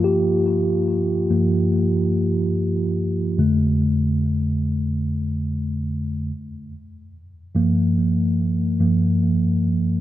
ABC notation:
X:1
M:4/4
L:1/8
Q:"Swing 16ths" 1/4=72
K:Gm
V:1 name="Tine electric piano"
G3 z4 z | z8 | z8 |]
V:2 name="Tine electric piano" clef=bass
[G,,F,B,]2 z [G,,F,B,] z4 | [F,,D,A,]6- [F,,D,A,] z | z2 [G,,F,B,]3 [G,,F,B,] z2 |]